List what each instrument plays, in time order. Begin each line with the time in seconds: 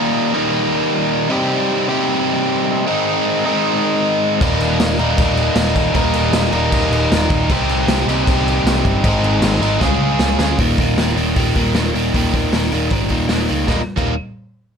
Already playing: overdriven electric guitar D#2 A#2 D#3 G3 A#3 D#4
0.34 overdriven electric guitar D#2 A#2 D#3 G3 A#3 D#4
1.29 overdriven electric guitar C3 G3 C4 D#4 G4
1.89 overdriven electric guitar C3 G3 C4 D#4 G4
2.87 overdriven electric guitar G#2 D#3 G#3 C4 D#4
3.46 overdriven electric guitar G#2 D#3 G#3 C4 D#4
4.41 picked electric bass D#1, overdriven electric guitar D#2 A#2 D#3 G3 A#3 D#4, kick, crash
4.60 picked electric bass D#1, crash
4.79 picked electric bass D#1, snare, crash
4.99 picked electric bass D#1, overdriven electric guitar D#2 A#2 D#3 G3 A#3 D#4, crash
5.18 picked electric bass D#1, kick, crash
5.37 crash
5.56 picked electric bass D#1, snare, crash
5.76 picked electric bass D#1, kick, crash
5.94 picked electric bass D#1, overdriven electric guitar D#2 A#2 D#3 G3 A#3 D#4, kick, crash
6.14 picked electric bass D#1, crash
6.33 picked electric bass D#1, snare, crash
6.53 picked electric bass D#1, overdriven electric guitar D#2 A#2 D#3 G3 A#3 D#4, crash
6.72 picked electric bass D#1, kick, crash
6.91 picked electric bass D#1, crash
7.11 picked electric bass D#1, snare, crash
7.30 picked electric bass D#1, kick, crash
7.50 picked electric bass C2, overdriven electric guitar C3 G3 C4 D#4 G4, kick, crash
7.68 picked electric bass C2, crash
7.87 picked electric bass C2, snare, crash
8.07 picked electric bass C2, overdriven electric guitar C3 G3 C4 D#4 G4, crash
8.27 picked electric bass C2, kick, crash
8.48 crash
8.65 picked electric bass C2, snare, crash
8.85 picked electric bass G1, kick, crash
9.04 picked electric bass G#1, overdriven electric guitar G#2 D#3 G#3 C4 D#4, kick, crash
9.23 picked electric bass G#1, crash
9.42 picked electric bass G#1, snare, crash
9.61 picked electric bass G#1, overdriven electric guitar G#2 D#3 G#3 C4 D#4, crash
9.80 picked electric bass C#2, overdriven electric guitar C#3 G#3 C#4 F4 G#4, kick, snare
9.99 picked electric bass C#2
10.19 picked electric bass C#2, snare
10.38 picked electric bass D2, overdriven electric guitar C#3 G#3 C#4 F4 G#4, snare
10.59 picked electric bass D#1, overdriven electric guitar D#2 A#2 D#3, kick, open hi-hat
10.78 picked electric bass D#1, overdriven electric guitar D#2 A#2 D#3, kick, open hi-hat
10.98 picked electric bass D#1, overdriven electric guitar D#2 A#2 D#3, snare, open hi-hat
11.17 picked electric bass D#1, overdriven electric guitar D#2 A#2 D#3, open hi-hat
11.36 picked electric bass D#1, overdriven electric guitar D#2 A#2 D#3, kick, open hi-hat
11.55 picked electric bass D#1, overdriven electric guitar D#2 A#2 D#3, kick, open hi-hat
11.75 picked electric bass D#1, overdriven electric guitar D#2 A#2 D#3, snare, open hi-hat
11.94 picked electric bass D#1, overdriven electric guitar D#2 A#2 D#3, open hi-hat
12.14 picked electric bass D#1, overdriven electric guitar D#2 A#2 D#3, kick, open hi-hat
12.34 picked electric bass D#1, overdriven electric guitar D#2 A#2 D#3, kick, open hi-hat
12.53 picked electric bass D#1, overdriven electric guitar D#2 A#2 D#3, snare, open hi-hat
12.72 picked electric bass D#1, overdriven electric guitar D#2 A#2 D#3, open hi-hat
12.90 picked electric bass G#1, overdriven electric guitar D#2 A#2 D#3, kick, open hi-hat
13.09 picked electric bass D#1, overdriven electric guitar D#2 A#2 D#3, kick, open hi-hat
13.29 picked electric bass D#1, overdriven electric guitar D#2 A#2 D#3, snare, open hi-hat
13.48 picked electric bass C#2, overdriven electric guitar D#2 A#2 D#3, open hi-hat
13.67 picked electric bass D#1, overdriven electric guitar D#2 A#2 D#3 G3 A#3 D#4, kick, snare
13.97 picked electric bass D#1, overdriven electric guitar D#2 A#2 D#3 G3 A#3 D#4, kick, crash